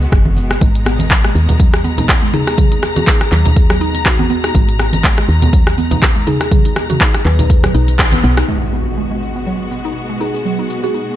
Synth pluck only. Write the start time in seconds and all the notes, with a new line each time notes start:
0.61 G#3
0.86 B3
1.10 G#3
1.24 G#3
1.49 B3
1.60 F#3
1.84 B3
1.98 D#4
2.23 G#3
2.34 D#4
2.58 F#3
2.72 D#4
2.96 F#4
3.07 D#4
3.32 F#3
3.45 D#4
3.70 F#3
3.81 D#4
4.05 D#4
4.19 B3
4.30 B3
4.44 D#4
4.55 G#3
4.79 B3
5.04 G#3
5.18 G#3
5.42 B3
5.53 F#3
5.78 B3
5.91 D#4
6.16 G#3
6.27 D#4
6.52 F#3
6.65 D#4
6.90 F#4
7.01 D#4
7.25 F#3
7.39 D#4
7.63 F#3
7.75 D#4
7.99 D#4
8.13 B3
8.24 B3
8.38 D#4
8.48 G#3
8.73 B3
8.97 G#3
9.11 G#3
9.36 B3
9.47 F#3
9.71 B3
9.85 D#4
10.10 G#3
10.20 D#4
10.45 F#3
10.59 D#4
10.83 F#4
10.94 D#4